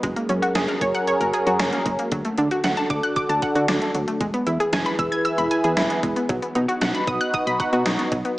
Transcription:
0.03 F#1 F#3 G#3 C#4 G#4 A#4, kick, closed hi-hat
0.16 A#3, closed hi-hat
0.29 F#2 C#4, closed hi-hat
0.42 F#4, closed hi-hat
0.55 F#1 G#4, snare, closed hi-hat
0.68 A#4, closed hi-hat
0.81 F#1 C#5, kick, closed hi-hat
0.95 F#5, closed hi-hat
1.07 C#5, closed hi-hat
1.20 F#1 A#4, closed hi-hat
1.33 G#4, closed hi-hat
1.47 F#2 F#4, closed hi-hat
1.59 F#1 C#4, snare, closed hi-hat
1.73 A#3, closed hi-hat
1.86 F#1 G#3, kick, closed hi-hat
1.99 A#3, closed hi-hat
2.12 D2 D3 F#3 D4 F#4 A4, kick, closed hi-hat
2.25 A3, closed hi-hat
2.38 D3 D4, closed hi-hat
2.51 F#4, closed hi-hat
2.64 D2 F#5, snare, closed hi-hat
2.77 A5, closed hi-hat
2.90 D2 D6, kick, closed hi-hat
3.03 F#6, closed hi-hat
3.16 D6, kick, closed hi-hat
3.29 D2 A5, closed hi-hat
3.42 F#5, kick, closed hi-hat
3.55 D3 F#4, closed hi-hat
3.68 D2 D4, snare, closed hi-hat
3.82 A3, closed hi-hat
3.95 D2 F#3, closed hi-hat
4.08 A3, closed hi-hat
4.21 E1 E3 G#3 E4 G#4 B4, kick, closed hi-hat
4.34 B3, closed hi-hat
4.47 E2 E4, closed hi-hat
4.60 G#4, closed hi-hat
4.73 E1 G#5, snare, closed hi-hat
4.86 B5, closed hi-hat
4.99 E1 E6, kick, closed hi-hat
5.12 G#6, closed hi-hat
5.25 E6, closed hi-hat
5.38 E1 B5, closed hi-hat
5.51 G#5, closed hi-hat
5.64 E2 G#4, closed hi-hat
5.77 E1 E4, snare, closed hi-hat
5.90 B3, closed hi-hat
6.03 E1 G#3, kick, closed hi-hat
6.16 B3, closed hi-hat
6.29 B1 F#3 B3 D#4 F#4, kick, closed hi-hat
6.42 B3, closed hi-hat
6.55 B2 D#4, closed hi-hat
6.68 F#4, closed hi-hat
6.81 B1 F#5, snare, closed hi-hat
6.95 B5, closed hi-hat
7.07 B1 D#6, kick, closed hi-hat
7.21 F#6, closed hi-hat
7.34 D#6, kick, closed hi-hat
7.46 B1 B5, closed hi-hat
7.60 F#5, kick, closed hi-hat
7.73 B2 F#4, closed hi-hat
7.86 B1 D#4, snare, closed hi-hat
7.99 B3, closed hi-hat
8.12 B1 F#3, kick, closed hi-hat
8.25 B3, closed hi-hat

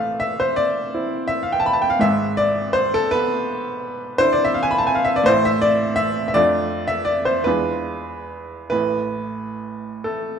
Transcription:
Already playing: A1 A2 A3 C5 D5 E5 F5
0.20 E5
0.40 C5
0.56 D5
0.94 C4 E4
1.28 E5
1.43 F5
1.52 G5
1.60 A5
1.66 B5
1.73 A5
1.82 G5
1.90 F5
1.99 G#1 G#2 E5
2.37 D5
2.73 C5
2.94 A4
3.11 B3 B4
4.18 D4 E4 C5
4.33 D5
4.45 E5
4.54 F5
4.63 G#5
4.71 B5
4.78 A5
4.87 G#5
4.95 F5
5.05 E5
5.16 D5
5.24 A1 A2 C5
5.28 A3 E4
5.45 E5
5.62 D5
5.96 E5
6.28 E5
6.34 F2 A3 D4 F4 D5
6.87 E5
7.05 D5
7.25 C5
7.44 E2 G#3 D4 F4 B4
8.70 A1 A2 B4
10.04 A3 A4

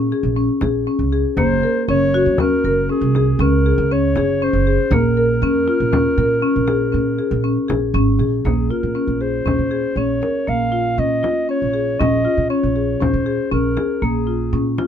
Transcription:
0.12 G#4
0.23 A#1
0.37 C#4
0.61 A#1 G#4, frame drum
0.87 C#4, frame drum
0.99 C#2
1.12 G#4
1.37 F#1 A#3 C5, frame drum
1.63 A#4
1.88 F#1 C#4 C#5
2.14 F#4, frame drum
2.26 F#2
2.38 C#4 A#4, frame drum
2.64 F#1 A#4, frame drum
2.89 C#4 G#4, frame drum
3.01 C2
3.15 G#4, frame drum
3.39 C#2 C#4 A#4
3.66 G#4
3.78 C#2
3.91 C#4 C#5
4.16 F#1 G#4, frame drum
4.41 C#4 C5, frame drum
4.53 F#1
4.67 G#4
4.91 A#1 A#3 A#4, frame drum
5.17 A#4, frame drum
5.42 F2 C#4, frame drum
5.68 F4
5.80 A#2
5.93 C#4, frame drum
6.17 A#2 A#4, frame drum
6.42 C#4, frame drum
6.56 A#1
6.67 G#4, frame drum
6.92 A#2 C#4, frame drum
7.19 G#4, frame drum
7.31 A#1
7.44 C#4, frame drum
7.68 A#1 G#4, frame drum
7.94 G#1 C#4
8.19 A#1 G#4
8.45 A#1 A#3 G#4, frame drum
8.70 F4 A#4
8.83 A#2
8.95 C#4
9.07 A#1
9.21 G#4 C5, frame drum
9.46 A#1 C#4, frame drum
9.58 A#2
9.71 G#4
9.96 A#1 C#4 C#5
10.22 A#4, frame drum
10.47 A#1 A#3 F5
10.72 F4
10.98 A#2 C#4 D#5
11.23 F4, frame drum
11.49 C#4 C#5
11.62 A#1
11.73 G#4
12.00 A#1 C#4 D#5, frame drum
12.25 F4
12.37 A#2
12.49 C#4 C#5
12.63 A#1
12.76 G#4, frame drum
13.00 A#1 C#4 C5, frame drum
13.14 A#2
13.26 G#4
13.52 A#1 C#4 A#4
13.77 G#4, frame drum
14.02 A#1 A#3 G#4
14.27 F4
14.53 A#2 C#4
14.78 F4, frame drum

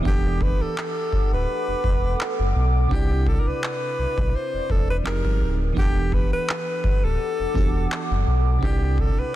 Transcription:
0.01 E3 B3 D4 F#5
0.05 E1 G4 A4 F#5 D6, kick
0.10 A4
0.41 B4, kick
0.61 D1 A4
0.78 clap
1.13 D1, kick
1.32 D1 B4
1.68 E1
1.84 E1, kick
2.21 clap
2.39 F#1
2.55 B1
2.87 C3 C4
2.91 C2 D4 E4 G4 D5 E5, kick
2.95 D5
3.27 A4, kick
3.40 A#4
3.46 B1 B4
3.64 clap
3.99 B1
4.18 B1, kick
4.35 C5
4.54 E1
4.70 E1 A4, kick
4.90 B4
5.04 F1 F3 C4 D#4 G4 G#4 A#4, clap
5.08 A#4
5.25 G1, kick
5.42 D1
5.73 E3 B3 D4, kick
5.77 E1 G4 A4 F#5 D6
5.81 A4
6.12 B4, kick
6.32 D1 B4
6.49 clap
6.84 D1, kick
7.04 D1 A4
7.39 E1
7.54 E1 E3 B3 D4 F#4 G4, kick
7.58 A4
7.92 clap
8.11 F#1
8.27 B1
8.59 C3 C4
8.63 C2 D4 E4 G4 D5 E5, kick
8.67 D5
8.98 A4, kick
9.18 B1 B4

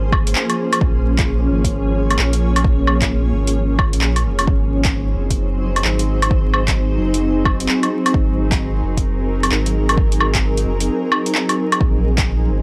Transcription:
Already playing: G#1 F3 A#3 C#4 G#4 C5
0.12 kick, low woodblock
0.27 closed hi-hat
0.35 clap
0.50 closed hi-hat, low woodblock
0.73 closed hi-hat, low woodblock
0.81 A#1 C#5, kick
1.19 kick, clap, closed hi-hat
1.50 G#1
1.64 kick, closed hi-hat
2.11 closed hi-hat, low woodblock
2.19 A#1, clap
2.33 closed hi-hat
2.56 closed hi-hat, low woodblock
2.64 kick
2.87 low woodblock
3.02 kick, clap, closed hi-hat
3.33 G#1
3.47 closed hi-hat
3.79 kick, low woodblock
3.93 A#1, closed hi-hat
4.01 clap
4.16 closed hi-hat, low woodblock
4.25 F1
4.39 closed hi-hat, low woodblock
4.47 G#1 F#3 C4 D#4 G#4 C5, kick
4.85 kick, clap, closed hi-hat
5.16 F#1
5.31 kick, closed hi-hat
5.76 closed hi-hat, low woodblock
5.84 G#1, clap
5.99 closed hi-hat
6.22 closed hi-hat, low woodblock
6.31 kick
6.54 low woodblock
6.68 kick, clap, closed hi-hat
6.99 F#1
7.14 closed hi-hat
7.45 kick, low woodblock
7.60 closed hi-hat
7.69 clap
7.83 closed hi-hat, low woodblock
8.06 closed hi-hat, low woodblock
8.14 G#1 A#4, kick
8.52 kick, clap, closed hi-hat
8.83 F#1
8.97 kick, closed hi-hat
9.43 closed hi-hat, low woodblock
9.51 G#1, clap
9.66 closed hi-hat
9.89 closed hi-hat, low woodblock
9.97 kick
10.12 closed hi-hat
10.21 low woodblock
10.35 kick, clap, closed hi-hat
10.57 closed hi-hat
10.66 F#1
10.80 closed hi-hat
11.12 low woodblock
11.26 closed hi-hat
11.35 clap
11.49 closed hi-hat, low woodblock
11.72 closed hi-hat, low woodblock
11.80 A#1 F3 A#3 C#4 C5, kick
12.18 kick, clap, closed hi-hat
12.49 G#1

